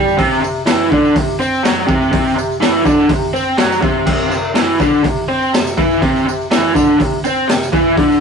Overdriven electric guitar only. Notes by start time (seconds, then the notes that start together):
Already playing: G3 G4
0.17 C3 C4
0.41 C3
0.66 E3 E4
0.90 D3 D4
1.16 C3
1.39 C4 C5
1.63 F#3 F#4
1.87 C3 C4
2.12 C3 C4
2.36 C3
2.60 E3 E4
2.85 D3 D4
3.10 C3
3.34 C4 C5
3.58 F#3 F#4
3.82 C3 C4
4.07 C3 C4
4.31 C3
4.55 E3 E4
4.80 D3 D4
5.04 C3
5.28 C4 C5
5.53 C3
5.77 E3 E4
6.02 C3 C4
6.27 C3
6.51 E3 E4
6.75 D3 D4
6.99 C3
7.25 C4 C5
7.48 C3
7.72 E3 E4
7.97 D3 D4